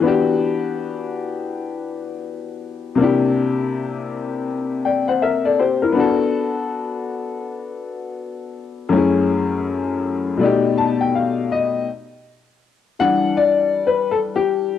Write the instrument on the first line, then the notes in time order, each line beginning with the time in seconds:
upright piano
0.00 E3 B3 D4
0.06 F#4 G4
2.95 C3 A#3
2.99 D4 E4
3.03 G4
4.85 D5 G5
5.08 C5 F#5
5.22 A#4 E5
5.45 A4 D5
5.59 G4 C5
5.82 E4 A#4
5.92 B3 D4
5.97 F#4 A4
8.89 F#2 A3 C#4
8.95 E4 G#4
10.37 B2 A3 D5
10.43 D#4 G4
10.78 A5
11.01 G5
11.15 F5
11.52 D#5
12.99 E3 G3 D4 F#5
13.37 D5
13.87 B4
14.11 A4
14.36 G4